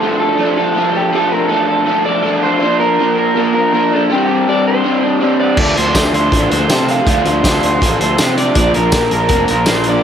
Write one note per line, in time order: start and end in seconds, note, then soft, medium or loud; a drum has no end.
0.00 0.37 F3 medium
0.00 0.38 A3 medium
0.00 0.40 D4 medium
0.00 0.19 A4 medium
0.20 0.56 A4 medium
0.37 0.74 F3 loud
0.37 0.58 A3 loud
0.37 0.56 D4 medium
0.56 0.75 A3 medium
0.56 0.77 D4 medium
0.56 0.96 A4 medium
0.75 1.12 F3 medium
0.75 0.96 A3 medium
0.75 0.94 D4 medium
0.94 1.13 A3 medium
0.94 1.15 D4 medium
0.94 1.13 G4 medium
1.13 1.49 F3 loud
1.13 1.33 A3 loud
1.13 1.30 D4 loud
1.13 1.31 A4 medium
1.31 1.50 A3 medium
1.31 1.52 D4 medium
1.31 1.48 A#4 medium
1.48 1.84 F3 medium
1.48 1.86 A3 medium
1.48 1.88 D4 medium
1.48 1.67 A4 medium
1.68 2.05 A4 medium
1.86 2.22 F3 medium
1.86 2.06 A3 loud
1.86 2.04 D4 loud
2.04 2.23 A3 medium
2.04 2.25 D4 medium
2.04 2.40 D5 medium
2.23 2.59 F3 medium
2.23 2.44 A3 medium
2.23 2.42 D4 loud
2.42 2.61 A3 medium
2.42 2.63 D4 medium
2.42 2.58 C5 loud
2.59 2.98 F3 medium
2.59 2.81 A#3 loud
2.59 2.79 D4 loud
2.59 2.77 C5 loud
2.79 2.99 A#3 medium
2.79 3.01 D4 medium
2.79 3.17 A#4 loud
2.99 3.33 F3 medium
2.99 3.35 A#3 medium
2.99 3.37 D4 medium
3.18 3.54 A#4 medium
3.35 3.71 F3 medium
3.35 3.54 A#3 loud
3.35 3.52 D4 loud
3.52 3.72 A#3 medium
3.52 3.75 D4 medium
3.52 3.72 A#4 loud
3.72 4.08 F3 medium
3.72 3.94 A#3 medium
3.72 3.91 D4 medium
3.72 3.91 A#4 medium
3.92 4.10 A#3 medium
3.92 4.13 D4 medium
3.92 4.12 A4 loud
4.10 4.46 G3 loud
4.10 4.30 C4 loud
4.10 4.27 D4 loud
4.10 4.49 G4 loud
4.27 4.49 C4 medium
4.27 4.51 D4 medium
4.47 4.83 G3 medium
4.47 4.85 C4 medium
4.47 4.86 D4 medium
4.47 4.65 D5 loud
4.67 5.18 C5 loud
4.84 5.19 G3 loud
4.84 5.05 C4 loud
4.84 5.02 D4 loud
5.02 5.21 C4 medium
5.02 5.23 D4 medium
5.20 5.56 G3 medium
5.20 5.42 C4 medium
5.20 5.39 D4 medium
5.39 5.57 C4 medium
5.39 5.59 D4 medium
5.39 5.57 D5 loud
5.57 5.72 D2 loud
5.57 5.94 F3 loud
5.57 5.78 A3 loud
5.57 5.75 D4 loud
5.57 5.77 D5 loud
5.57 kick loud
5.57 crash medium
5.75 5.92 D2 loud
5.75 5.96 A3 medium
5.75 5.98 D4 medium
5.75 6.13 C5 loud
5.75 closed hi-hat medium
5.94 6.10 D2 loud
5.94 6.31 F3 medium
5.94 6.32 A3 medium
5.94 6.34 D4 medium
5.94 kick medium
5.94 snare loud
5.94 closed hi-hat loud
5.94 tambourine loud
6.13 6.28 D2 medium
6.13 6.50 C5 loud
6.13 closed hi-hat medium
6.31 6.47 A1 loud
6.31 6.69 F3 medium
6.31 6.52 A3 loud
6.31 6.49 D4 loud
6.31 kick medium
6.31 closed hi-hat loud
6.50 6.67 D2 loud
6.50 6.69 A3 medium
6.50 6.72 D4 medium
6.50 6.90 C5 loud
6.50 closed hi-hat medium
6.69 6.99 C3 medium
6.69 7.06 F3 medium
6.69 6.90 A3 medium
6.69 6.88 D4 loud
6.69 snare loud
6.69 closed hi-hat loud
6.69 tambourine loud
6.88 7.07 A3 medium
6.88 7.09 D4 medium
6.88 7.08 F5 loud
6.88 closed hi-hat medium
7.07 7.22 D2 loud
7.07 7.43 F3 loud
7.07 7.26 A3 loud
7.07 7.24 D4 loud
7.07 7.27 F5 loud
7.07 kick loud
7.07 closed hi-hat loud
7.24 7.41 D2 medium
7.24 7.44 A3 medium
7.24 7.46 D4 medium
7.24 7.44 C5 loud
7.24 closed hi-hat medium
7.44 7.59 D2 loud
7.44 7.80 F3 medium
7.44 7.82 A3 medium
7.44 7.84 D4 medium
7.44 7.62 C5 loud
7.44 kick medium
7.44 snare loud
7.44 closed hi-hat loud
7.44 tambourine loud
7.63 7.78 D2 loud
7.63 8.00 C5 loud
7.63 closed hi-hat medium
7.81 7.97 A1 loud
7.81 8.18 F3 medium
7.81 8.01 A3 loud
7.81 7.99 D4 loud
7.81 kick loud
7.81 closed hi-hat loud
7.99 8.15 D2 medium
7.99 8.20 A3 medium
7.99 8.21 D4 medium
7.99 8.31 C5 loud
7.99 closed hi-hat medium
8.18 8.49 C3 loud
8.18 8.54 F3 medium
8.18 8.39 A3 medium
8.18 8.38 D4 medium
8.18 snare loud
8.18 closed hi-hat loud
8.18 tambourine loud
8.32 8.37 C5 medium
8.37 8.56 A3 medium
8.37 8.58 D4 medium
8.37 8.56 D5 loud
8.37 closed hi-hat medium
8.55 8.71 A#1 loud
8.55 8.92 F3 loud
8.55 8.76 A#3 loud
8.55 8.73 D4 loud
8.55 8.74 D5 loud
8.55 kick loud
8.55 closed hi-hat loud
8.74 8.91 A#1 loud
8.74 8.93 A#3 medium
8.74 8.96 D4 medium
8.74 9.12 A#4 loud
8.74 closed hi-hat medium
8.92 9.08 A#1 medium
8.92 9.27 F3 medium
8.92 9.28 A#3 medium
8.92 kick medium
8.92 snare loud
8.92 closed hi-hat loud
8.92 tambourine loud
8.96 9.31 D4 medium
9.11 9.27 A#1 medium
9.11 9.49 A#4 loud
9.11 closed hi-hat medium
9.29 9.44 F1 loud
9.29 9.65 F3 loud
9.29 9.49 A#3 loud
9.29 9.47 D4 loud
9.29 kick loud
9.29 closed hi-hat loud
9.47 9.65 A#1 loud
9.47 9.67 A#3 medium
9.47 9.69 D4 medium
9.47 9.69 A#4 loud
9.47 closed hi-hat medium
9.66 9.97 A#1 loud
9.66 10.03 F3 medium
9.66 9.88 A#3 loud
9.66 9.85 D4 loud
9.66 9.86 C5 loud
9.66 snare loud
9.66 closed hi-hat loud
9.66 tambourine loud
9.84 10.03 D4 medium
9.84 closed hi-hat medium
9.89 10.03 A#3 medium
9.89 10.03 D5 loud